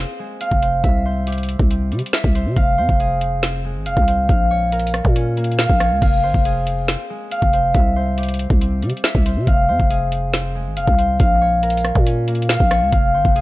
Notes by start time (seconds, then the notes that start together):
Already playing: A#3 C4 G#4 C5 F5
0.19 G#3
0.41 F5, closed hi-hat
0.51 F1, kick
0.62 C5, closed hi-hat
0.84 C2 E5, kick, closed hi-hat
1.05 C5
1.27 G4, closed hi-hat
1.32 closed hi-hat
1.38 closed hi-hat
1.43 closed hi-hat
1.49 closed hi-hat
1.59 C2, kick
1.70 C4, closed hi-hat
1.92 C3 G3, closed hi-hat
1.99 closed hi-hat
2.06 closed hi-hat
2.13 E5, snare
2.24 C2, kick
2.35 C5, closed hi-hat
2.46 C3
2.56 F1 F5, kick, closed hi-hat
2.78 F2 C5
2.89 F1, kick
3.00 G#4, closed hi-hat
3.21 closed hi-hat
3.43 C4, snare, closed hi-hat
3.64 G#3
3.75 G#1
3.86 F1 F5, closed hi-hat
3.97 C2, kick
4.08 C5, closed hi-hat
4.29 A#1 F5, kick, closed hi-hat
4.51 C#5
4.72 A#4, closed hi-hat
4.80 closed hi-hat
4.87 closed hi-hat
4.94 cross-stick, closed hi-hat
5.05 A#2, kick
5.15 C#4, closed hi-hat
5.37 A#3, closed hi-hat
5.44 closed hi-hat
5.52 closed hi-hat
5.59 F5, snare
5.70 A#1, kick
5.80 C#5, cross-stick, closed hi-hat
5.91 C#2
6.02 F1 F5, kick, closed hi-hat, crash
6.23 G1 C5
6.34 F1, kick
6.45 G#4, closed hi-hat
6.67 closed hi-hat
6.88 C4, snare, closed hi-hat
7.10 G#3
7.32 F5, closed hi-hat
7.42 F1, kick
7.53 C5, closed hi-hat
7.74 C2 E5, kick, closed hi-hat
7.96 C5
8.18 G4, closed hi-hat
8.23 closed hi-hat
8.29 closed hi-hat
8.34 closed hi-hat
8.39 closed hi-hat
8.50 C2, kick
8.61 C4, closed hi-hat
8.83 C3 G3, closed hi-hat
8.90 closed hi-hat
8.97 closed hi-hat
9.04 E5, snare
9.15 C2, kick
9.26 C5, closed hi-hat
9.36 C3
9.47 F1 F5, kick, closed hi-hat
9.69 F2 C5
9.80 F1, kick
9.90 G#4, closed hi-hat
10.12 closed hi-hat
10.33 C4, snare, closed hi-hat
10.55 G#3
10.66 G#1
10.77 F1 F5, closed hi-hat
10.87 C2, kick
10.98 C5, closed hi-hat
11.20 A#1 F5, kick, closed hi-hat
11.41 C#5
11.63 A#4, closed hi-hat
11.70 closed hi-hat
11.77 closed hi-hat
11.85 cross-stick, closed hi-hat
11.95 A#2, kick
12.06 C#4, closed hi-hat
12.28 A#3, closed hi-hat
12.35 closed hi-hat
12.42 closed hi-hat
12.49 F5, snare
12.60 A#1, kick
12.71 C#5, cross-stick, closed hi-hat
12.82 C#2
12.92 F1 F5, kick, closed hi-hat
13.14 G1 C5
13.25 F1, kick
13.36 G#4, closed hi-hat